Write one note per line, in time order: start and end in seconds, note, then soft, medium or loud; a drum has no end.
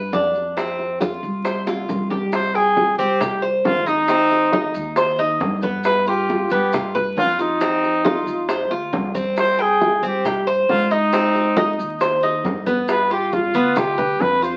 0.00 0.12 B4 medium
0.12 1.17 F2 medium
0.12 0.56 D4 medium
0.12 high bongo soft
0.12 low bongo medium
0.12 high conga medium
0.12 maracas medium
0.34 high bongo soft
0.34 high conga soft
0.34 maracas soft
0.57 1.00 C4 medium
0.57 high bongo medium
0.57 high conga soft
0.57 maracas medium
0.79 high bongo soft
0.79 high conga soft
1.01 1.44 F4 medium
1.01 high bongo soft
1.01 high conga medium
1.01 maracas medium
1.23 1.85 C2 medium
1.23 high conga soft
1.23 maracas soft
1.45 1.66 C5 medium
1.45 high bongo medium
1.45 high conga soft
1.45 maracas medium
1.67 2.10 F4 medium
1.67 high bongo medium
1.67 high conga soft
1.67 maracas medium
1.89 2.93 C2 medium
1.89 low bongo medium
1.89 high conga medium
1.89 maracas medium
2.10 2.32 G4 medium
2.10 low bongo medium
2.10 high conga medium
2.10 maracas soft
2.32 2.57 C5 loud
2.32 high bongo medium
2.32 high conga soft
2.32 maracas medium
2.55 2.98 G#4 medium
2.55 2.98 G5 medium
2.55 high bongo soft
2.55 high conga soft
2.55 maracas soft
2.77 high bongo medium
2.77 high conga medium
2.77 maracas soft
2.98 3.61 C2 medium
2.98 3.20 C4 medium
2.98 3.40 G4 medium
2.98 high conga soft
2.98 maracas medium
3.21 3.42 G4 medium
3.21 high bongo medium
3.21 high conga soft
3.21 low conga medium
3.21 maracas loud
3.42 3.85 C5 medium
3.42 high bongo soft
3.42 high conga soft
3.42 maracas soft
3.64 4.69 G#1 medium
3.64 3.89 F4 loud
3.64 high bongo soft
3.64 low bongo medium
3.64 high conga medium
3.64 maracas soft
3.86 4.08 D#4 medium
3.86 5.19 D#4 loud
3.86 high bongo soft
3.86 high conga soft
3.86 maracas medium
4.08 4.52 C4 medium
4.08 high bongo medium
4.08 high conga soft
4.08 maracas medium
4.30 high bongo soft
4.30 high conga soft
4.30 maracas soft
4.52 4.96 D#4 medium
4.52 high bongo medium
4.52 high conga medium
4.52 maracas soft
4.74 5.37 D#2 medium
4.74 high conga soft
4.74 maracas medium
4.96 5.18 C5 medium
4.96 high bongo medium
4.96 high conga soft
4.96 maracas loud
5.18 5.62 D#4 medium
5.18 high bongo soft
5.18 high conga soft
5.18 maracas soft
5.40 6.44 G2 loud
5.40 high bongo soft
5.40 low bongo medium
5.40 high conga medium
5.40 maracas soft
5.62 6.06 B3 medium
5.62 high bongo soft
5.62 high conga medium
5.62 maracas medium
5.84 6.06 B4 loud
5.84 high bongo medium
5.84 high conga soft
5.84 maracas medium
6.06 6.50 F4 medium
6.06 6.49 G4 medium
6.06 high bongo soft
6.06 high conga soft
6.06 maracas soft
6.28 high bongo medium
6.28 high conga medium
6.28 maracas soft
6.50 7.13 G2 medium
6.50 6.73 B3 medium
6.50 6.93 G4 medium
6.50 high conga soft
6.50 maracas medium
6.72 6.95 F4 medium
6.72 high bongo medium
6.72 high conga soft
6.72 low conga medium
6.72 maracas medium
6.94 7.38 B4 medium
6.94 high bongo soft
6.94 high conga soft
6.94 low conga medium
6.94 maracas soft
7.17 8.20 F2 medium
7.17 7.38 F4 loud
7.17 high bongo soft
7.17 low bongo medium
7.17 high conga medium
7.17 maracas soft
7.39 8.68 D#4 loud
7.39 7.60 F4 medium
7.39 high bongo soft
7.39 high conga soft
7.39 maracas medium
7.60 8.04 C4 medium
7.60 high bongo medium
7.60 high conga soft
7.60 maracas medium
7.83 high bongo soft
7.83 high conga soft
7.83 maracas soft
8.05 8.47 F4 medium
8.05 high bongo medium
8.05 high conga loud
8.05 maracas soft
8.26 8.67 F2 medium
8.26 high conga soft
8.26 maracas medium
8.49 8.70 C5 medium
8.49 high bongo medium
8.49 high conga soft
8.49 maracas loud
8.70 8.91 D2 medium
8.70 9.14 F4 medium
8.70 high bongo soft
8.70 high conga soft
8.70 maracas soft
8.93 9.96 C2 medium
8.93 high bongo soft
8.93 low bongo medium
8.93 high conga medium
8.93 maracas soft
9.15 9.58 C4 medium
9.15 high bongo soft
9.15 high conga medium
9.15 maracas medium
9.36 9.63 C5 loud
9.36 high bongo medium
9.36 high conga soft
9.36 maracas medium
9.59 10.04 G#4 medium
9.59 10.01 G5 medium
9.59 high bongo soft
9.59 high conga soft
9.59 maracas soft
9.81 high bongo medium
9.81 high conga medium
9.81 maracas soft
10.02 10.64 G2 medium
10.02 10.24 C4 medium
10.02 high conga soft
10.02 maracas medium
10.07 10.46 G4 medium
10.25 10.46 G4 medium
10.25 high bongo medium
10.25 high conga soft
10.25 low conga medium
10.25 maracas loud
10.47 10.89 C5 medium
10.47 high bongo soft
10.47 high conga soft
10.47 maracas soft
10.69 11.73 G#2 loud
10.69 10.93 F4 loud
10.69 high bongo soft
10.69 low bongo medium
10.69 high conga medium
10.69 maracas soft
10.90 11.12 D#4 medium
10.90 12.23 D#4 loud
10.90 high bongo soft
10.90 high conga soft
10.90 maracas medium
11.12 11.55 C4 medium
11.12 high bongo medium
11.12 high conga soft
11.12 maracas medium
11.35 high bongo soft
11.35 high conga soft
11.35 maracas soft
11.57 12.00 D#4 medium
11.57 high bongo medium
11.57 high conga loud
11.57 maracas soft
11.79 12.41 D#2 medium
11.79 high conga soft
11.79 maracas medium
12.01 12.22 C5 medium
12.01 high bongo medium
12.01 high conga soft
12.01 maracas loud
12.23 12.65 D#4 medium
12.23 high bongo soft
12.23 high conga soft
12.23 maracas soft
12.44 13.48 G2 medium
12.44 high bongo soft
12.44 low bongo medium
12.44 high conga medium
12.44 maracas soft
12.66 13.09 B3 medium
12.66 high bongo soft
12.66 high conga medium
12.66 maracas medium
12.88 13.10 B4 medium
12.88 high bongo medium
12.88 high conga soft
12.88 maracas medium
13.10 13.53 F4 medium
13.10 13.35 G4 medium
13.10 high bongo soft
13.10 high conga soft
13.10 maracas soft
13.32 13.79 F4 medium
13.32 high bongo medium
13.32 high conga medium
13.32 maracas soft
13.54 14.16 D2 medium
13.54 13.76 B3 loud
13.54 high conga soft
13.54 maracas medium
13.76 13.98 F4 medium
13.76 14.23 G4 loud
13.76 high bongo medium
13.76 high conga soft
13.76 low conga medium
13.76 maracas medium
13.98 14.41 B4 medium
13.98 high bongo soft
13.98 high conga soft
13.98 low conga medium
13.98 maracas soft
14.19 14.57 F2 medium
14.19 14.43 B4 loud
14.19 high bongo soft
14.19 low bongo medium
14.19 high conga medium
14.19 maracas soft
14.42 14.57 F4 medium
14.42 14.57 C5 loud
14.42 high bongo soft
14.42 high conga soft
14.42 maracas medium